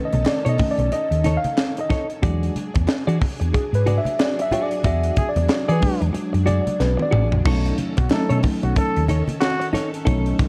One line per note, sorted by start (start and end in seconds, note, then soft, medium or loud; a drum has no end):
0.00 0.56 D#3 medium
0.00 2.18 D#3 medium
0.00 0.56 A3 soft
0.00 0.56 C#4 medium
0.00 2.18 C#4 medium
0.00 2.18 A4 loud
0.05 0.28 D#5 medium
0.13 0.24 B1 medium
0.13 muted clean electric guitar stroke medium
0.13 closed hi-hat medium
0.13 high conga medium
0.25 0.49 D5 medium
0.25 muted clean electric guitar stroke soft
0.25 snare loud
0.25 clap medium
0.25 muted conga soft
0.45 0.56 B2 medium
0.45 0.57 D#4 medium
0.45 0.58 A4 medium
0.45 0.57 C#5 medium
0.45 closed hi-hat medium
0.49 0.72 D#5 loud
0.58 0.89 D#3 medium
0.58 0.89 A3 soft
0.58 0.89 C#4 medium
0.58 kick medium
0.58 open hi-hat medium
0.58 muted conga soft
0.58 high conga medium
0.71 0.93 D5 loud
0.78 0.89 B1 medium
0.78 muted clean electric guitar stroke soft
0.78 closed hi-hat soft
0.92 1.38 D#5 loud
0.92 muted fingered electric bass stroke soft
0.92 muted clean electric guitar stroke soft
0.92 closed hi-hat medium
1.11 1.36 D#2 medium
1.11 closed hi-hat soft
1.24 1.38 D#4 medium
1.24 1.39 A4 medium
1.24 1.39 C#5 medium
1.24 closed hi-hat medium
1.24 muted conga soft
1.24 high conga medium
1.37 1.82 F5 loud
1.44 muted clean electric guitar stroke medium
1.44 closed hi-hat medium
1.44 high conga medium
1.58 snare loud
1.58 clap medium
1.58 muted conga soft
1.77 2.11 D#5 medium
1.77 muted clean electric guitar stroke soft
1.77 closed hi-hat medium
1.90 2.07 D#4 medium
1.90 2.08 A4 medium
1.90 2.08 C#5 medium
1.90 kick medium
1.90 snare soft
1.90 closed hi-hat medium
1.90 low conga medium
2.10 muted clean electric guitar stroke soft
2.10 closed hi-hat soft
2.22 2.48 E2 loud
2.22 2.68 F#3 soft
2.22 7.41 F#3 medium
2.22 2.69 G#3 soft
2.22 2.69 D4 medium
2.22 7.41 D4 medium
2.22 2.53 F#4 medium
2.22 2.54 G#4 loud
2.22 7.41 G#4 medium
2.22 2.54 D5 loud
2.22 kick loud
2.22 closed hi-hat loud
2.22 low conga medium
2.43 closed hi-hat medium
2.56 closed hi-hat medium
2.56 muted conga soft
2.56 high conga medium
2.74 2.86 E2 loud
2.74 muted clean electric guitar stroke soft
2.74 kick medium
2.74 closed hi-hat medium
2.74 high conga medium
2.87 muted clean electric guitar stroke soft
2.87 muted fingered electric bass stroke soft
2.87 snare loud
2.87 clap medium
3.07 3.18 E3 medium
3.07 3.19 F#4 medium
3.07 3.19 G#4 medium
3.07 3.19 D5 medium
3.07 closed hi-hat medium
3.21 muted clean electric guitar stroke soft
3.21 kick medium
3.21 open hi-hat medium
3.21 muted conga soft
3.21 high conga medium
3.40 3.51 E2 medium
3.40 muted clean electric guitar stroke soft
3.40 closed hi-hat soft
3.53 3.76 G#4 medium
3.53 muted clean electric guitar stroke soft
3.53 kick medium
3.53 closed hi-hat medium
3.53 muted conga soft
3.73 3.98 G#2 medium
3.73 3.98 B4 loud
3.73 closed hi-hat soft
3.86 4.00 F#4 medium
3.86 4.00 G#4 medium
3.86 4.00 D5 medium
3.86 closed hi-hat medium
3.86 high conga medium
3.98 4.18 E5 loud
4.05 muted clean electric guitar stroke medium
4.05 closed hi-hat medium
4.05 high conga medium
4.19 4.42 D5 medium
4.19 snare loud
4.19 clap loud
4.19 muted conga soft
4.39 4.64 E5 loud
4.39 muted clean electric guitar stroke medium
4.39 closed hi-hat medium
4.51 4.74 F#4 medium
4.51 4.72 G#4 medium
4.51 4.71 D5 medium
4.51 closed hi-hat medium
4.51 muted conga soft
4.51 low conga medium
4.63 4.85 D5 medium
4.71 muted clean electric guitar stroke medium
4.71 closed hi-hat soft
4.84 5.09 E2 loud
4.84 5.16 F#4 medium
4.84 5.16 G#4 medium
4.84 5.16 D5 loud
4.84 5.29 E5 loud
4.84 kick loud
4.84 closed hi-hat loud
4.84 muted conga soft
4.84 low conga medium
5.03 closed hi-hat medium
5.16 5.30 G#4 medium
5.16 kick medium
5.16 closed hi-hat medium
5.16 high conga medium
5.29 5.69 D5 medium
5.36 5.46 E2 medium
5.36 muted clean electric guitar stroke soft
5.36 closed hi-hat medium
5.36 high conga medium
5.49 muted fingered electric bass stroke soft
5.49 muted clean electric guitar stroke soft
5.49 snare loud
5.49 clap medium
5.68 5.79 E3 medium
5.68 5.80 F#4 medium
5.68 6.08 G#4 loud
5.68 5.80 G#4 medium
5.68 6.02 B4 medium
5.68 5.80 D5 loud
5.68 closed hi-hat medium
5.81 7.41 F#3 medium
5.81 7.41 G#3 medium
5.81 7.41 D4 medium
5.81 kick loud
5.81 open hi-hat medium
5.81 high conga medium
6.01 6.11 E2 medium
6.01 muted clean electric guitar stroke soft
6.01 closed hi-hat medium
6.13 muted clean electric guitar stroke soft
6.13 muted fingered electric bass stroke soft
6.13 closed hi-hat medium
6.13 muted conga soft
6.33 6.59 F#2 medium
6.33 muted clean electric guitar stroke medium
6.33 closed hi-hat soft
6.46 6.64 F#4 medium
6.46 6.64 G#4 medium
6.46 6.81 D5 loud
6.46 6.64 D5 medium
6.46 closed hi-hat medium
6.46 muted conga soft
6.46 high conga medium
6.67 closed hi-hat medium
6.67 high conga medium
6.80 6.95 B1 medium
6.80 7.03 B4 loud
6.80 snare medium
6.80 clap medium
6.97 muted clean electric guitar stroke medium
6.97 high tom medium
7.02 7.33 D5 medium
7.11 7.32 A1 loud
7.11 7.29 F#4 medium
7.11 7.30 G#4 medium
7.11 7.30 D5 medium
7.11 mid tom medium
7.11 low conga medium
7.32 7.42 A#1 medium
7.32 muted clean electric guitar stroke medium
7.32 floor tom medium
7.44 7.70 B1 loud
7.44 10.48 D#3 medium
7.44 7.93 F#3 medium
7.44 7.93 A3 medium
7.44 10.48 C#4 medium
7.44 7.93 C#4 medium
7.44 7.76 D#4 loud
7.44 7.94 D#4 medium
7.44 10.48 A4 medium
7.44 7.77 A4 loud
7.44 7.77 C#5 loud
7.44 kick loud
7.44 crash loud
7.44 low conga medium
7.65 closed hi-hat medium
7.78 closed hi-hat medium
7.78 muted conga soft
7.78 high conga medium
7.97 8.08 B1 medium
7.97 8.08 F#4 medium
7.97 muted clean electric guitar stroke soft
7.97 kick medium
7.97 closed hi-hat medium
7.97 high conga medium
8.10 9.02 F#3 medium
8.10 9.02 A3 medium
8.10 9.03 C#4 medium
8.10 9.03 D#4 loud
8.10 8.27 A4 loud
8.10 muted clean electric guitar stroke soft
8.10 snare loud
8.10 clap loud
8.10 muted conga soft
8.29 8.40 B2 medium
8.29 8.42 D#4 medium
8.29 8.42 A4 medium
8.29 8.39 A4 medium
8.29 8.41 C#5 medium
8.29 closed hi-hat medium
8.43 kick medium
8.43 open hi-hat medium
8.43 high conga medium
8.63 8.73 B1 medium
8.63 8.74 F#4 medium
8.63 muted clean electric guitar stroke medium
8.63 closed hi-hat soft
8.76 9.03 A4 loud
8.76 muted clean electric guitar stroke soft
8.76 kick medium
8.76 closed hi-hat medium
8.96 9.21 D#2 medium
8.96 closed hi-hat soft
9.08 9.22 D#4 medium
9.08 9.22 A4 medium
9.08 9.23 C#5 medium
9.08 closed hi-hat medium
9.08 muted conga soft
9.08 high conga medium
9.28 muted clean electric guitar stroke soft
9.28 closed hi-hat medium
9.28 high conga medium
9.40 9.67 F#4 loud
9.40 snare loud
9.40 clap medium
9.40 muted conga soft
9.60 muted clean electric guitar stroke medium
9.60 closed hi-hat medium
9.73 9.90 D#4 medium
9.73 9.91 A4 medium
9.73 9.91 C#5 loud
9.73 snare soft
9.73 closed hi-hat medium
9.73 muted conga soft
9.73 low conga medium
9.94 closed hi-hat medium
10.05 10.31 B1 loud
10.05 10.48 F#3 medium
10.05 10.48 A3 medium
10.05 10.48 C#4 medium
10.05 10.36 D#4 medium
10.05 10.48 D#4 medium
10.05 10.37 A4 loud
10.05 10.37 C#5 loud
10.05 kick loud
10.05 closed hi-hat loud
10.05 muted conga soft
10.05 low conga medium
10.26 closed hi-hat medium
10.39 kick medium
10.39 closed hi-hat medium
10.39 high conga medium